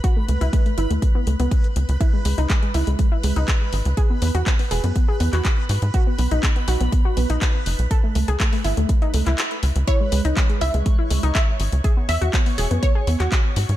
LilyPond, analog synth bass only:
\new Staff \with { instrumentName = "Analog synth bass" } { \clef bass \time 4/4 \key e \major \tempo 4 = 122 r8 cis,16 cis,16 r8 gis,,16 dis,16 r8 cis,16 cis,16 r8 cis,16 cis,16 | r8 cis,16 cis,16 r8 cis,16 cis,16 r8 cis,16 cis,16 r8 gis,,16 cis,16 | r8 e,16 e,16 r8 e,,16 fis,16 r8 e,16 e,16 r8 gis,16 gis,16 | r8 b,,16 b,,16 r8 b,,16 b,,16 r8 b,,16 b,,16 r8 fis,,16 b,,16 |
r8 cis,16 cis,16 r8 gis,,16 dis,16 r8 cis,16 cis,16 r8 cis,16 cis,16 | r8 cis,16 cis,16 r8 cis,16 cis,16 r8 cis,16 cis,16 r8 gis,,16 cis,16 | r8 e,16 e,16 r8 e,,16 fis,16 r8 e,16 e,16 r8 gis,16 gis,16 | }